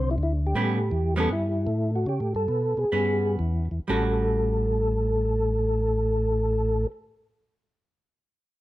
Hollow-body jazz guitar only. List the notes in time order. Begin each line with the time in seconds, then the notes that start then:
Already playing: D3 F#3 C4 E4
0.55 G3 B3 C#4
1.16 G3 B3 C#4
2.92 B3 C#4
3.88 G3 C#4 F#4